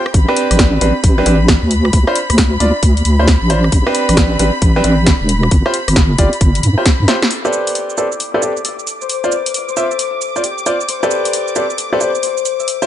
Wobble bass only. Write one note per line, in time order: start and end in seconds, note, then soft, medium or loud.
0.14 0.26 A1 loud
0.51 0.79 A1 medium
0.81 0.93 A1 medium
1.04 1.23 A1 medium
1.26 1.58 A1 medium
1.63 1.91 D2 medium
1.93 2.05 D2 loud
2.30 2.58 D2 medium
2.60 2.72 D2 medium
2.83 3.02 D2 medium
3.05 3.37 D2 medium
3.42 3.70 A1 medium
3.72 3.84 A1 loud
4.09 4.37 A1 medium
4.40 4.51 A1 medium
4.62 4.81 A1 medium
4.84 5.16 A1 medium
5.21 5.49 E1 medium
5.51 5.63 G1 loud
5.88 6.16 G1 medium
6.19 6.30 G1 medium
6.41 6.60 G1 medium
6.63 6.75 G2 loud
7.00 7.07 G2 medium